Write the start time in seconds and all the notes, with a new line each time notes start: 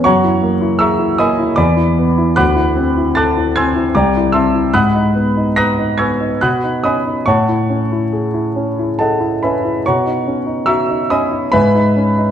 0.04 F#2 C#5 F#5 A#5 C#6
0.24 E4
0.43 A#3
0.61 E4
0.79 G#4 E5 A#5 C#6 E6
0.99 E4
1.18 A#3 D#5 G#5 B5 D#6
1.39 E4
1.56 E2 D5 G#5 B5 D6
1.76 E4
1.98 B3
2.18 E4
2.36 D2 F#5 B5 D6 F#6
2.55 E4
2.76 C4
2.97 E4
3.15 A4 A5 D6 F#6 A6
3.37 E4
3.56 C4 G#5 C6 E6 G#6
3.75 E4
3.95 C2 D5 G5 A#5 D6
4.17 E4
4.32 C4 E5 A5 C6 E6
4.55 E4
4.74 G#2 F#5 B5 D#6 F#6
4.94 D#4
5.15 B3
5.37 D#4
5.56 B4 A#5 D#6 F#6 A#6
5.79 D#4
5.98 B3 G#5 C#6 E6 G#6
6.20 D#4
6.41 B2 F#5 B5 D#6 F#6
6.64 D#4
6.84 C#4 D#5 G#5 B5 D#6
7.05 D#4
7.26 A2 C#5 F#5 A5 C#6
7.49 E4
7.70 C#4
7.92 E4
8.13 G#4
8.34 E4
8.56 C#4
8.79 E4
8.99 G#4 A4 D#5 F#5 A5
9.20 E4
9.43 C#4 B4 E5 G#5 B5
9.64 E4
9.86 B2 C#5 F#5 A#5 C#6
10.06 D#4
10.27 C#4
10.47 D#4
10.66 F#4 E5 A#5 C#6 E6
10.89 D#4
11.10 C#4 D#5 G#5 B5 D#6
11.31 D#4
11.52 G#2 B4 E5 G#5 B5
11.75 D#4
11.97 C#4
12.18 D#4